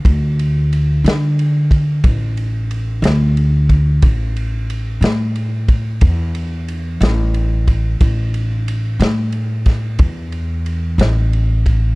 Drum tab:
RD |xxxxxxxxxxxx|xxxxxxxxxxxx|xxxxxxxxxxxx|
SD |---o-----o--|---o-----o--|---o-o---o--|
BD |o----oo----o|o----oo----o|o----oo----o|